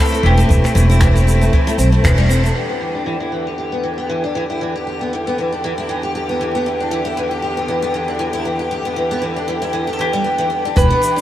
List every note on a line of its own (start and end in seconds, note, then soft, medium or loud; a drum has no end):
0.00 2.52 A3 medium
0.00 2.52 C4 medium
0.00 2.52 E4 medium
0.00 0.13 G4 medium
0.00 0.26 A4 loud
0.00 kick medium
0.05 shaker soft
0.08 0.23 A3 medium
0.08 shaker soft
0.14 shaker soft
0.23 0.42 E1 medium
0.23 0.38 E3 medium
0.23 2.01 G4 medium
0.37 0.49 A3 loud
0.37 shaker soft
0.49 0.60 E1 loud
0.49 0.63 E3 medium
0.49 kick medium
0.49 shaker medium
0.64 0.75 C4 medium
0.64 finger snap soft
0.64 shaker soft
0.75 1.47 E1 loud
0.75 0.84 E3 loud
0.75 shaker medium
0.90 1.00 E4 loud
0.90 shaker medium
1.01 1.15 E3 medium
1.01 finger snap loud
1.01 kick medium
1.01 shaker medium
1.16 1.26 G4 medium
1.16 shaker soft
1.27 1.41 G4 medium
1.27 shaker medium
1.41 1.52 A3 medium
1.41 shaker soft
1.53 1.67 E3 medium
1.53 kick loud
1.67 1.78 A3 loud
1.67 shaker soft
1.78 1.96 B1 medium
1.78 1.92 C4 medium
1.78 shaker medium
1.92 2.03 A3 medium
2.04 2.49 E1 medium
2.04 2.17 E3 medium
2.04 finger snap loud
2.04 kick loud
2.04 shaker medium
2.18 2.29 G3 loud
2.29 2.43 C4 medium
2.29 shaker medium
2.44 2.55 A3 medium
2.44 shaker soft
2.55 10.72 E2 medium
2.55 10.72 D3 medium
2.55 2.69 E3 medium
2.55 10.73 G4 medium
2.69 2.80 B3 medium
2.81 2.94 E3 medium
2.95 3.06 D4 medium
3.06 3.15 E3 medium
3.20 3.31 E4 medium
3.32 3.45 E3 medium
3.47 3.57 G4 medium
3.58 3.72 G4 medium
3.72 3.83 B3 medium
3.83 3.97 E3 medium
3.98 4.08 B3 medium
4.09 4.23 E3 medium
4.24 4.34 D4 medium
4.35 4.43 E3 medium
4.50 4.60 E4 medium
4.61 4.74 E3 medium
4.76 4.86 G4 medium
4.87 5.00 G4 medium
5.01 5.11 B3 medium
5.13 5.26 E3 medium
5.27 5.37 B3 medium
5.38 5.51 E3 medium
5.52 5.63 D4 medium
5.64 5.72 E3 medium
5.78 5.88 E4 medium
5.89 6.02 E3 medium
6.03 6.14 G4 medium
6.15 6.29 G4 medium
6.29 6.39 B3 medium
6.41 6.54 E3 medium
6.55 6.65 B3 medium
6.66 6.79 E3 medium
6.80 6.91 D4 medium
6.91 7.00 E3 medium
7.05 7.16 E4 medium
7.17 7.30 E3 medium
7.31 7.41 G4 medium
7.42 7.56 G4 medium
7.57 7.67 B3 medium
7.68 7.82 E3 medium
7.82 7.93 B3 medium
7.94 8.07 E3 medium
8.08 8.19 D4 medium
8.19 8.28 E3 medium
8.33 8.44 E4 medium
8.45 8.58 E3 medium
8.59 8.70 G4 medium
8.71 8.85 G4 medium
8.85 8.96 B3 medium
8.96 9.10 E3 medium
9.11 9.21 B3 medium
9.22 9.35 E3 medium
9.36 9.47 D4 medium
9.48 9.56 E3 medium
9.62 9.72 E4 medium
9.73 9.86 E3 medium
9.87 9.98 G4 medium
9.93 9.99 A4 medium
9.99 10.13 E3 medium
9.99 10.73 G4 medium
10.13 10.24 G3 medium
10.24 10.38 B3 medium
10.38 10.49 E3 medium
10.50 10.63 B3 medium
10.65 10.75 D4 medium
10.76 10.86 E1 medium
10.76 10.90 E3 medium
10.76 11.21 E3 medium
10.76 11.21 D4 medium
10.76 11.21 G4 medium
10.76 11.21 B4 loud
10.76 kick loud
10.76 shaker medium
10.90 11.01 B3 medium
11.02 11.15 E3 medium
11.02 shaker medium
11.16 11.21 D4 medium